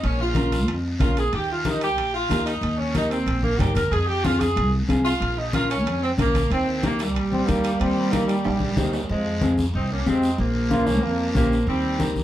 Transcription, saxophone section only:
0, 0, Header, 1, 2, 480
1, 0, Start_track
1, 0, Tempo, 323450
1, 46, Time_signature, 4, 2, 24, 8
1, 18160, End_track
2, 0, Start_track
2, 0, Title_t, "Saxophone section"
2, 0, Program_c, 0, 65
2, 71, Note_on_c, 0, 61, 96
2, 283, Note_off_c, 0, 61, 0
2, 314, Note_on_c, 0, 65, 90
2, 1203, Note_off_c, 0, 65, 0
2, 1492, Note_on_c, 0, 65, 92
2, 1714, Note_off_c, 0, 65, 0
2, 1740, Note_on_c, 0, 68, 91
2, 1959, Note_off_c, 0, 68, 0
2, 1991, Note_on_c, 0, 67, 93
2, 2205, Note_off_c, 0, 67, 0
2, 2243, Note_on_c, 0, 65, 84
2, 2451, Note_off_c, 0, 65, 0
2, 2488, Note_on_c, 0, 63, 92
2, 2710, Note_off_c, 0, 63, 0
2, 2712, Note_on_c, 0, 67, 100
2, 3150, Note_off_c, 0, 67, 0
2, 3181, Note_on_c, 0, 65, 98
2, 3624, Note_off_c, 0, 65, 0
2, 3644, Note_on_c, 0, 63, 94
2, 4095, Note_off_c, 0, 63, 0
2, 4121, Note_on_c, 0, 61, 91
2, 4368, Note_off_c, 0, 61, 0
2, 4386, Note_on_c, 0, 63, 100
2, 4590, Note_on_c, 0, 60, 91
2, 4604, Note_off_c, 0, 63, 0
2, 5083, Note_off_c, 0, 60, 0
2, 5089, Note_on_c, 0, 58, 90
2, 5297, Note_on_c, 0, 67, 100
2, 5316, Note_off_c, 0, 58, 0
2, 5554, Note_on_c, 0, 70, 91
2, 5557, Note_off_c, 0, 67, 0
2, 5788, Note_off_c, 0, 70, 0
2, 5807, Note_on_c, 0, 68, 101
2, 6023, Note_on_c, 0, 67, 100
2, 6035, Note_off_c, 0, 68, 0
2, 6271, Note_on_c, 0, 65, 98
2, 6280, Note_off_c, 0, 67, 0
2, 6511, Note_on_c, 0, 68, 92
2, 6525, Note_off_c, 0, 65, 0
2, 7005, Note_off_c, 0, 68, 0
2, 7481, Note_on_c, 0, 65, 107
2, 7936, Note_off_c, 0, 65, 0
2, 7976, Note_on_c, 0, 63, 92
2, 8202, Note_on_c, 0, 65, 101
2, 8218, Note_off_c, 0, 63, 0
2, 8433, Note_off_c, 0, 65, 0
2, 8444, Note_on_c, 0, 61, 102
2, 8898, Note_off_c, 0, 61, 0
2, 8943, Note_on_c, 0, 60, 87
2, 9050, Note_off_c, 0, 60, 0
2, 9194, Note_on_c, 0, 58, 92
2, 9634, Note_off_c, 0, 58, 0
2, 9676, Note_on_c, 0, 60, 98
2, 10114, Note_off_c, 0, 60, 0
2, 10162, Note_on_c, 0, 58, 91
2, 10375, Note_off_c, 0, 58, 0
2, 10403, Note_on_c, 0, 55, 89
2, 13005, Note_off_c, 0, 55, 0
2, 13022, Note_on_c, 0, 55, 81
2, 13024, Note_on_c, 0, 51, 64
2, 13465, Note_off_c, 0, 55, 0
2, 13466, Note_off_c, 0, 51, 0
2, 13495, Note_on_c, 0, 56, 90
2, 13508, Note_on_c, 0, 53, 67
2, 14163, Note_off_c, 0, 56, 0
2, 14170, Note_off_c, 0, 53, 0
2, 14465, Note_on_c, 0, 63, 89
2, 14472, Note_on_c, 0, 60, 74
2, 14682, Note_off_c, 0, 63, 0
2, 14686, Note_off_c, 0, 60, 0
2, 14703, Note_on_c, 0, 61, 83
2, 14710, Note_on_c, 0, 58, 68
2, 14923, Note_on_c, 0, 60, 94
2, 14937, Note_off_c, 0, 61, 0
2, 14939, Note_on_c, 0, 56, 74
2, 14940, Note_off_c, 0, 58, 0
2, 15372, Note_off_c, 0, 60, 0
2, 15381, Note_off_c, 0, 56, 0
2, 15411, Note_on_c, 0, 58, 102
2, 15422, Note_on_c, 0, 53, 76
2, 16787, Note_off_c, 0, 58, 0
2, 16793, Note_off_c, 0, 53, 0
2, 16843, Note_on_c, 0, 58, 98
2, 16851, Note_on_c, 0, 53, 74
2, 17289, Note_off_c, 0, 58, 0
2, 17294, Note_off_c, 0, 53, 0
2, 17327, Note_on_c, 0, 60, 104
2, 17337, Note_on_c, 0, 55, 86
2, 17993, Note_off_c, 0, 60, 0
2, 17998, Note_off_c, 0, 55, 0
2, 18160, End_track
0, 0, End_of_file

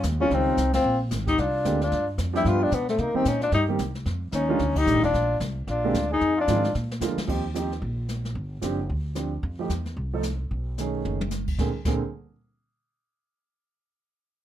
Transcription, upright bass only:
0, 0, Header, 1, 3, 480
1, 0, Start_track
1, 0, Tempo, 268456
1, 1498, Time_signature, 4, 2, 24, 8
1, 25819, End_track
2, 0, Start_track
2, 0, Title_t, "Upright bass"
2, 0, Program_c, 0, 32
2, 62, Note_on_c, 0, 39, 94
2, 525, Note_off_c, 0, 39, 0
2, 543, Note_on_c, 0, 37, 83
2, 1006, Note_off_c, 0, 37, 0
2, 1021, Note_on_c, 0, 36, 85
2, 1485, Note_off_c, 0, 36, 0
2, 1496, Note_on_c, 0, 34, 86
2, 1963, Note_off_c, 0, 34, 0
2, 1982, Note_on_c, 0, 32, 85
2, 2446, Note_off_c, 0, 32, 0
2, 2464, Note_on_c, 0, 36, 80
2, 2927, Note_off_c, 0, 36, 0
2, 2947, Note_on_c, 0, 38, 85
2, 3409, Note_off_c, 0, 38, 0
2, 3425, Note_on_c, 0, 43, 82
2, 3888, Note_off_c, 0, 43, 0
2, 3897, Note_on_c, 0, 41, 85
2, 4364, Note_off_c, 0, 41, 0
2, 4377, Note_on_c, 0, 43, 83
2, 4844, Note_off_c, 0, 43, 0
2, 4861, Note_on_c, 0, 47, 76
2, 5326, Note_off_c, 0, 47, 0
2, 5336, Note_on_c, 0, 48, 82
2, 5604, Note_off_c, 0, 48, 0
2, 5818, Note_on_c, 0, 46, 82
2, 6284, Note_off_c, 0, 46, 0
2, 6292, Note_on_c, 0, 43, 89
2, 6761, Note_off_c, 0, 43, 0
2, 6779, Note_on_c, 0, 36, 80
2, 7239, Note_off_c, 0, 36, 0
2, 7250, Note_on_c, 0, 41, 81
2, 7720, Note_off_c, 0, 41, 0
2, 7729, Note_on_c, 0, 39, 87
2, 8200, Note_off_c, 0, 39, 0
2, 8217, Note_on_c, 0, 38, 84
2, 8670, Note_off_c, 0, 38, 0
2, 8681, Note_on_c, 0, 33, 87
2, 8850, Note_on_c, 0, 29, 65
2, 8877, Note_off_c, 0, 33, 0
2, 8992, Note_off_c, 0, 29, 0
2, 9003, Note_on_c, 0, 27, 72
2, 9159, Note_off_c, 0, 27, 0
2, 9185, Note_on_c, 0, 34, 84
2, 9648, Note_off_c, 0, 34, 0
2, 9658, Note_on_c, 0, 36, 87
2, 10123, Note_off_c, 0, 36, 0
2, 10146, Note_on_c, 0, 34, 86
2, 10608, Note_off_c, 0, 34, 0
2, 10628, Note_on_c, 0, 38, 86
2, 11089, Note_off_c, 0, 38, 0
2, 11104, Note_on_c, 0, 41, 83
2, 11567, Note_off_c, 0, 41, 0
2, 11582, Note_on_c, 0, 44, 91
2, 12046, Note_off_c, 0, 44, 0
2, 12065, Note_on_c, 0, 46, 85
2, 12516, Note_off_c, 0, 46, 0
2, 12526, Note_on_c, 0, 41, 79
2, 12802, Note_off_c, 0, 41, 0
2, 13020, Note_on_c, 0, 39, 80
2, 13932, Note_off_c, 0, 39, 0
2, 13976, Note_on_c, 0, 34, 84
2, 14890, Note_off_c, 0, 34, 0
2, 14933, Note_on_c, 0, 31, 85
2, 15383, Note_off_c, 0, 31, 0
2, 15416, Note_on_c, 0, 30, 72
2, 15864, Note_off_c, 0, 30, 0
2, 15904, Note_on_c, 0, 38, 84
2, 16815, Note_off_c, 0, 38, 0
2, 16859, Note_on_c, 0, 41, 86
2, 17306, Note_off_c, 0, 41, 0
2, 17334, Note_on_c, 0, 40, 75
2, 17784, Note_off_c, 0, 40, 0
2, 17818, Note_on_c, 0, 36, 81
2, 18732, Note_off_c, 0, 36, 0
2, 18789, Note_on_c, 0, 35, 74
2, 19697, Note_off_c, 0, 35, 0
2, 19758, Note_on_c, 0, 30, 77
2, 20663, Note_off_c, 0, 30, 0
2, 20716, Note_on_c, 0, 34, 78
2, 20872, Note_off_c, 0, 34, 0
2, 21190, Note_on_c, 0, 34, 84
2, 21456, Note_off_c, 0, 34, 0
2, 25819, End_track
3, 0, Start_track
3, 0, Title_t, "Muted upright bass strokes"
3, 5614, Note_on_c, 9, 29, 37
3, 5793, Note_off_c, 9, 29, 0
3, 12823, Note_on_c, 9, 29, 39
3, 13002, Note_off_c, 9, 29, 0
3, 25819, End_track
0, 0, End_of_file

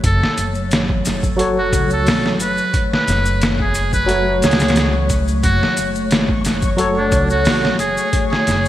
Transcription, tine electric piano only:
0, 0, Header, 1, 2, 480
1, 0, Start_track
1, 0, Key_signature, 3, "minor"
1, 0, Tempo, 674157
1, 28, Time_signature, 4, 2, 24, 8
1, 6183, End_track
2, 0, Start_track
2, 0, Title_t, "Tine electric piano"
2, 0, Program_c, 0, 4
2, 971, Note_on_c, 0, 54, 87
2, 981, Note_on_c, 0, 66, 80
2, 990, Note_on_c, 0, 69, 76
2, 1001, Note_on_c, 0, 73, 93
2, 1673, Note_off_c, 0, 54, 0
2, 1678, Note_off_c, 0, 66, 0
2, 1682, Note_off_c, 0, 69, 0
2, 1688, Note_off_c, 0, 73, 0
2, 2893, Note_on_c, 0, 54, 91
2, 2903, Note_on_c, 0, 66, 85
2, 2914, Note_on_c, 0, 57, 78
2, 2923, Note_on_c, 0, 73, 95
2, 3593, Note_off_c, 0, 54, 0
2, 3599, Note_off_c, 0, 66, 0
2, 3604, Note_off_c, 0, 57, 0
2, 3609, Note_off_c, 0, 73, 0
2, 4818, Note_on_c, 0, 54, 86
2, 4827, Note_on_c, 0, 66, 78
2, 4835, Note_on_c, 0, 69, 84
2, 4846, Note_on_c, 0, 73, 102
2, 5516, Note_off_c, 0, 54, 0
2, 5521, Note_off_c, 0, 66, 0
2, 5524, Note_off_c, 0, 69, 0
2, 5530, Note_off_c, 0, 73, 0
2, 6183, End_track
0, 0, End_of_file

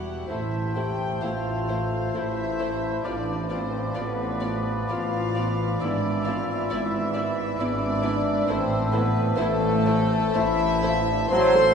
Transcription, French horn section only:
0, 0, Header, 1, 2, 480
1, 0, Start_track
1, 0, Key_signature, 0, "minor"
1, 0, Tempo, 928793
1, 154, Time_signature, 3, 2, 24, 8
1, 1112, Tempo, 902256
1, 2072, Tempo, 952381
1, 2552, Tempo, 896861
1, 4952, Tempo, 953895
1, 6133, End_track
2, 0, Start_track
2, 0, Title_t, "French horn section"
2, 0, Program_c, 0, 60
2, 0, Note_on_c, 0, 66, 56
2, 132, Note_off_c, 0, 66, 0
2, 150, Note_on_c, 0, 64, 56
2, 388, Note_on_c, 0, 67, 53
2, 395, Note_off_c, 0, 64, 0
2, 632, Note_on_c, 0, 65, 56
2, 634, Note_off_c, 0, 67, 0
2, 1109, Note_off_c, 0, 65, 0
2, 1109, Note_on_c, 0, 64, 70
2, 1590, Note_on_c, 0, 62, 68
2, 1591, Note_off_c, 0, 64, 0
2, 1757, Note_off_c, 0, 62, 0
2, 1830, Note_on_c, 0, 60, 60
2, 2066, Note_off_c, 0, 60, 0
2, 2072, Note_on_c, 0, 59, 68
2, 2546, Note_on_c, 0, 65, 73
2, 2553, Note_off_c, 0, 59, 0
2, 3033, Note_on_c, 0, 62, 74
2, 3036, Note_off_c, 0, 65, 0
2, 3270, Note_off_c, 0, 62, 0
2, 3272, Note_on_c, 0, 65, 68
2, 3516, Note_off_c, 0, 65, 0
2, 3522, Note_on_c, 0, 64, 69
2, 3998, Note_off_c, 0, 64, 0
2, 3998, Note_on_c, 0, 62, 80
2, 4471, Note_off_c, 0, 62, 0
2, 4478, Note_on_c, 0, 60, 87
2, 4710, Note_on_c, 0, 59, 80
2, 4712, Note_off_c, 0, 60, 0
2, 4939, Note_on_c, 0, 57, 101
2, 4952, Note_off_c, 0, 59, 0
2, 5430, Note_off_c, 0, 57, 0
2, 5436, Note_on_c, 0, 64, 103
2, 5710, Note_on_c, 0, 65, 74
2, 5711, Note_off_c, 0, 64, 0
2, 5764, Note_on_c, 0, 64, 76
2, 5765, Note_off_c, 0, 65, 0
2, 5817, Note_off_c, 0, 64, 0
2, 5818, Note_on_c, 0, 62, 75
2, 5866, Note_on_c, 0, 64, 90
2, 5870, Note_off_c, 0, 62, 0
2, 5908, Note_on_c, 0, 72, 127
2, 5918, Note_off_c, 0, 64, 0
2, 6133, Note_off_c, 0, 72, 0
2, 6133, End_track
0, 0, End_of_file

